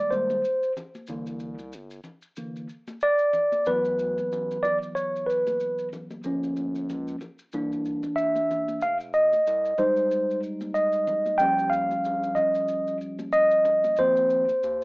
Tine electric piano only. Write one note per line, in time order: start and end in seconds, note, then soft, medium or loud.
0.00 0.11 D#3 medium
0.00 0.11 G3 soft
0.00 0.11 G#3 medium
0.00 0.11 A#3 medium
0.00 0.12 D5 loud
0.11 0.41 D#3 soft
0.11 0.41 G3 soft
0.11 0.41 G#3 soft
0.11 0.41 A#3 medium
0.11 0.72 C5 medium
1.08 1.53 D3 medium
1.08 1.54 E3 soft
1.08 1.54 A#3 medium
2.37 2.66 D3 soft
2.37 2.67 E3 soft
2.37 2.67 A#3 medium
3.03 3.69 D5 loud
3.67 6.21 E3 medium
3.67 6.21 F#3 medium
3.67 6.21 B3 medium
3.67 4.66 B4 loud
4.63 4.77 D5 loud
4.95 5.29 C#5 loud
5.27 5.88 B4 medium
6.24 7.17 F3 medium
6.24 7.18 A#3 soft
6.24 7.18 C#4 medium
7.54 8.79 E3 medium
7.54 8.79 A#3 soft
7.54 8.79 D4 medium
8.16 8.84 E5 loud
8.82 8.97 F5 loud
9.14 9.81 D#5 loud
9.78 11.36 G3 medium
9.78 11.36 G#3 medium
9.78 11.37 D#4 medium
9.78 10.40 C5 medium
10.74 11.42 D#5 medium
11.38 13.94 F3 medium
11.38 13.95 G3 medium
11.38 13.95 C#4 medium
11.38 11.73 G5 loud
11.70 12.38 F5 loud
12.35 12.97 D#5 medium
13.33 14.00 D#5 loud
13.98 14.43 F3 medium
13.98 14.44 A#3 medium
13.98 14.44 C4 medium
13.98 14.84 C5 loud